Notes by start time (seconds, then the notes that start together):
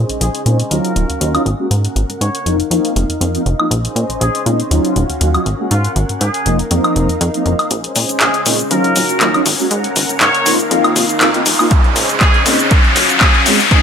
Already playing: C#4 G#4 C5 D#5
0.09 A#1, closed hi-hat
0.21 A#1 G#4, closed hi-hat
0.35 closed hi-hat
0.46 A#2 G#3 C4 C#4 D#4, closed hi-hat
0.60 closed hi-hat
0.71 D#2 F#3 C#4 D#4 F4 F#4 A#4 F5, closed hi-hat
0.85 closed hi-hat
0.96 D#1 F#3 C#4 D#4 F4, closed hi-hat
1.10 D#2, closed hi-hat
1.21 D#2 F#3 C#4 D#4 F4, closed hi-hat
1.34 F#3 C#4 D#4 F4, closed hi-hat, high woodblock
1.46 G#1 A#4 F#5, closed hi-hat
1.59 G#3 A#3 C#4 F#4
1.71 G#2, closed hi-hat
1.85 closed hi-hat
1.96 G#1, closed hi-hat
2.09 G#2, closed hi-hat
2.21 G#2 C#5, closed hi-hat
2.35 closed hi-hat
2.46 F1 F3 A#3 C4 D#4 F5, closed hi-hat
2.60 closed hi-hat
2.71 F2 F3 A#3 C4 D#4, closed hi-hat
2.85 closed hi-hat
2.96 F1 F3 A#3 C4 D#4, closed hi-hat
3.09 F2, closed hi-hat
3.21 F2 F3 A#3 C4 D#4, closed hi-hat
3.34 F3 A#3 C4 D#4, closed hi-hat
3.46 F1, closed hi-hat
3.59 F3 A#3 C4 D#4, high woodblock
3.71 A#1 C#4 G#4 C5 D#5, closed hi-hat
3.85 closed hi-hat
3.96 A#2, closed hi-hat
4.09 A#1, closed hi-hat
4.21 A#1 G#4, closed hi-hat
4.35 closed hi-hat
4.46 A#2 G#3 C4 C#4 D#4, closed hi-hat
4.60 closed hi-hat
4.71 D#2 F#3 C#4 D#4 F4 F#4 F5, closed hi-hat
4.85 closed hi-hat
4.96 D#1 F#3 C#4 D#4 F4, closed hi-hat
5.10 D#2, closed hi-hat
5.21 D#2 F#3 C#4 D#4 F4, closed hi-hat
5.34 F#3 C#4 D#4 F4, closed hi-hat, high woodblock
5.46 G#1 A#4 F#5, closed hi-hat
5.59 G#3 A#3 C#4 F#4
5.71 G#2 F4, closed hi-hat
5.84 closed hi-hat
5.96 G#1, closed hi-hat
6.09 G#2, closed hi-hat
6.21 G#2 G#4, closed hi-hat
6.34 closed hi-hat
6.46 F1 F3 A#3 C4 D#4 F5, closed hi-hat
6.59 closed hi-hat
6.71 F2 F3 A#3 C4 D#4, closed hi-hat
6.84 closed hi-hat, high woodblock
6.96 F1 F3 A#3 C4 D#4, closed hi-hat
7.09 F2, closed hi-hat
7.21 F2, closed hi-hat
7.34 F3 A#3 C4 D#4, closed hi-hat
7.46 F1 F3 A#3 C4 D#4, closed hi-hat
7.59 closed hi-hat, high woodblock
7.71 A#1 C#4 G#4 C5 D#5, closed hi-hat, riser, shaker
7.84 closed hi-hat
7.96 A#2, open hi-hat, shaker
8.09 A#1, closed hi-hat, shaker
8.20 A#1 G#4, clap, closed hi-hat, shaker
8.34 closed hi-hat
8.46 A#2 G#3 C4 C#4 D#4, open hi-hat, shaker
8.60 shaker
8.71 D#2 F#3 C#4 D#4 F4 F#4 A#4 F5, closed hi-hat, shaker
8.84 closed hi-hat
8.96 D#1 F#3 C#4 D#4 F4, open hi-hat, shaker
9.09 D#2, closed hi-hat, shaker
9.21 D#2 F#3 C#4 D#4 F4, clap, closed hi-hat, shaker
9.34 F#3 C#4 D#4 F4, closed hi-hat, high woodblock
9.46 G#1 A#4 F#5, open hi-hat, shaker
9.59 G#3 A#3 C#4 F#4, shaker
9.71 G#2, closed hi-hat, shaker
9.84 closed hi-hat
9.96 G#1, open hi-hat, shaker
10.09 G#2, closed hi-hat, shaker
10.21 G#2 C#5, clap, closed hi-hat, shaker
10.35 closed hi-hat
10.46 F1 A#3 C4 D#4 F4 F5, open hi-hat, shaker
10.60 closed hi-hat, shaker
10.71 F2 A#3 C4 D#4 F4, closed hi-hat, shaker
10.84 closed hi-hat, high woodblock
10.96 F1 A#3 C4 D#4 F4, open hi-hat, shaker
11.09 F2, closed hi-hat, shaker
11.21 F2 A#3 C4 D#4 F4, clap, closed hi-hat, shaker
11.34 A#3 C4 D#4 F4, closed hi-hat
11.46 F1, open hi-hat, shaker
11.59 A#3 C4 D#4 F4, high woodblock, shaker
11.71 A#1 C#4 G#4 C5 D#5, kick, closed hi-hat, shaker
11.84 closed hi-hat
11.96 A#2, open hi-hat, shaker
12.09 A#1, closed hi-hat, shaker
12.21 A#1 G#4, kick, clap, closed hi-hat, shaker
12.34 closed hi-hat
12.46 A#2 G#3 C4 C#4 D#4, open hi-hat, shaker
12.59 closed hi-hat, shaker
12.71 D#2 F#4 F5, kick, closed hi-hat, shaker
12.84 closed hi-hat
12.96 D#1, open hi-hat, shaker
13.09 D#2, closed hi-hat, shaker
13.21 D#2 G#4, kick, clap, closed hi-hat, shaker
13.34 closed hi-hat, high woodblock
13.46 G#1 G#3 C4 C#4 D#4 A#4 F#5, open hi-hat, shaker
13.60 shaker
13.71 G#2 G#3 C4 C#4 D#4 G#4, kick, closed hi-hat, shaker